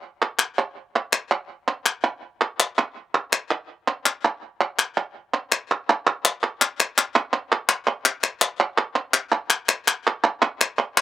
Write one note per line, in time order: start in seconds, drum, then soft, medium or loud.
0.39 clap medium
1.13 clap medium
1.31 clap soft
1.86 clap medium
2.04 clap soft
2.60 clap medium
2.78 clap medium
3.33 clap medium
3.51 clap soft
4.06 clap medium
4.25 clap soft
4.79 clap medium
4.97 clap soft
5.52 clap medium
5.71 clap soft
6.25 clap medium
6.43 clap soft
6.61 clap medium
6.80 clap medium
6.98 clap medium
7.16 clap medium
7.69 clap medium
7.87 clap soft
8.05 clap medium
8.24 clap medium
8.41 clap loud
8.60 clap medium
9.14 clap medium
9.32 clap soft
9.50 clap medium
9.69 clap loud
9.88 clap loud
10.07 clap medium
10.61 clap loud
10.79 clap soft
10.97 clap medium